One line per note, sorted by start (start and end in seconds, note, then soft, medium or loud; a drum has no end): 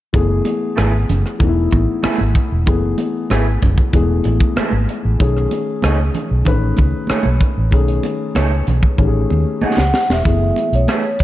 0.13 0.40 F#1 medium
0.13 1.25 E3 medium
0.13 1.25 A3 medium
0.13 1.26 B3 medium
0.13 1.26 G#4 medium
0.13 kick medium
0.13 closed hi-hat medium
0.13 muted conga soft
0.45 closed hi-hat medium
0.45 muted conga soft
0.76 1.03 G#1 medium
0.76 0.91 A3 medium
0.76 0.91 E4 medium
0.76 0.92 G#4 medium
0.76 0.92 B4 medium
0.76 cross-stick medium
0.76 closed hi-hat medium
0.76 high conga soft
1.09 1.22 F#1 medium
1.09 closed hi-hat medium
1.09 low conga medium
1.26 cross-stick soft
1.39 1.66 E1 medium
1.39 2.51 E3 medium
1.39 2.51 A3 medium
1.39 2.52 B3 medium
1.39 1.47 D#4 medium
1.39 kick medium
1.39 closed hi-hat medium
1.39 low conga medium
1.48 2.56 E4 medium
1.71 1.85 A1 medium
1.71 kick medium
1.71 closed hi-hat medium
1.71 muted conga soft
2.03 2.18 A3 medium
2.03 2.18 E4 medium
2.03 2.18 G#4 medium
2.03 2.18 B4 medium
2.03 muted fingered electric bass stroke soft
2.03 cross-stick medium
2.03 closed hi-hat medium
2.03 high conga medium
2.18 2.33 G#1 medium
2.18 high conga medium
2.35 kick medium
2.35 closed hi-hat medium
2.52 2.68 E1 medium
2.66 2.93 F#1 medium
2.66 3.78 E3 medium
2.66 3.78 A3 medium
2.66 3.79 B3 medium
2.66 3.79 G#4 medium
2.66 kick medium
2.66 closed hi-hat medium
2.66 muted conga soft
2.98 closed hi-hat medium
2.98 muted conga soft
3.30 3.56 G#1 medium
3.30 3.45 A3 medium
3.30 3.45 E4 medium
3.30 3.45 G#4 medium
3.30 3.45 B4 medium
3.30 cross-stick loud
3.30 closed hi-hat medium
3.30 high conga medium
3.62 3.75 F#1 medium
3.62 kick medium
3.62 closed hi-hat medium
3.62 low conga medium
3.78 kick medium
3.93 4.19 E1 medium
3.93 5.05 E3 medium
3.93 4.00 G#3 soft
3.93 5.05 B3 medium
3.93 5.06 G#4 medium
3.93 kick medium
3.93 closed hi-hat medium
4.00 5.08 A3 medium
4.24 4.38 A1 medium
4.24 closed hi-hat medium
4.24 muted conga soft
4.40 kick medium
4.56 4.71 A3 medium
4.56 4.71 E4 medium
4.56 4.71 G#4 medium
4.56 4.72 B4 medium
4.56 muted fingered electric bass stroke soft
4.56 cross-stick loud
4.56 closed hi-hat medium
4.56 high conga medium
4.71 4.85 G#1 medium
4.71 high conga medium
4.89 closed hi-hat medium
5.05 5.17 A1 medium
5.19 5.46 B1 medium
5.19 6.31 D#3 medium
5.19 6.31 A3 medium
5.19 6.32 C#4 medium
5.19 6.32 G#4 medium
5.19 kick loud
5.19 closed hi-hat medium
5.19 muted conga soft
5.37 cross-stick soft
5.51 closed hi-hat medium
5.51 muted conga soft
5.82 6.09 C#2 medium
5.82 5.98 A3 medium
5.82 5.98 D#4 medium
5.82 5.98 G#4 medium
5.82 5.98 C#5 medium
5.82 cross-stick medium
5.82 closed hi-hat medium
5.82 high conga medium
6.14 closed hi-hat medium
6.14 low conga medium
6.31 6.44 B1 medium
6.45 6.72 A1 medium
6.45 7.57 D#3 medium
6.45 7.58 A3 medium
6.45 7.58 C#4 medium
6.45 7.58 B4 medium
6.45 kick medium
6.45 closed hi-hat medium
6.45 low conga medium
6.77 6.91 C#2 medium
6.77 kick medium
6.77 closed hi-hat medium
6.77 muted conga soft
7.07 7.24 A3 medium
7.07 7.24 D#4 medium
7.07 7.24 G#4 medium
7.07 7.25 C#5 medium
7.07 muted fingered electric bass stroke soft
7.07 cross-stick loud
7.07 closed hi-hat medium
7.07 high conga medium
7.23 7.38 B1 medium
7.23 high conga medium
7.41 kick medium
7.41 closed hi-hat medium
7.58 7.73 A1 medium
7.71 7.98 B1 medium
7.71 8.83 D#3 medium
7.71 8.84 A3 medium
7.71 8.84 C#4 medium
7.71 8.85 G#4 medium
7.71 kick medium
7.71 closed hi-hat medium
7.71 muted conga soft
7.88 closed hi-hat soft
8.03 closed hi-hat medium
8.03 muted conga soft
8.35 8.61 C#2 medium
8.35 8.50 A3 medium
8.35 8.50 D#4 medium
8.35 8.50 G#4 medium
8.35 8.51 C#5 medium
8.35 cross-stick medium
8.35 closed hi-hat medium
8.35 high conga medium
8.67 8.80 B1 medium
8.67 closed hi-hat medium
8.67 low conga medium
8.83 kick medium
8.97 9.24 A1 medium
8.97 10.10 D#3 medium
8.97 10.10 A3 medium
8.97 10.10 C#4 medium
8.97 9.06 G4 medium
8.97 kick medium
9.07 10.14 G#4 medium
9.30 9.44 D#2 medium
9.30 muted conga soft
9.61 9.76 A3 medium
9.61 9.77 D#4 medium
9.61 9.77 G#4 medium
9.61 9.77 C#5 medium
9.61 10.08 F#5 medium
9.61 muted fingered electric bass stroke soft
9.61 high conga medium
9.77 9.91 C#2 medium
9.77 snare medium
9.77 high conga medium
9.94 snare medium
10.09 10.22 E1 medium
10.09 10.76 E5 medium
10.09 snare medium
10.24 10.51 F#1 medium
10.24 11.24 E3 medium
10.24 11.24 A3 medium
10.24 11.24 B3 medium
10.24 11.24 G#4 medium
10.24 kick medium
10.24 closed hi-hat medium
10.24 muted conga soft
10.56 closed hi-hat medium
10.56 muted conga soft
10.72 10.85 B1 medium
10.72 11.22 C#5 medium
10.72 closed hi-hat soft
10.88 11.03 A3 medium
10.88 11.03 E4 medium
10.88 11.03 G#4 medium
10.88 11.03 B4 medium
10.88 cross-stick medium
10.88 closed hi-hat medium
10.88 high conga medium
11.04 closed hi-hat soft
11.19 muted fingered electric bass stroke soft
11.19 kick medium
11.19 closed hi-hat medium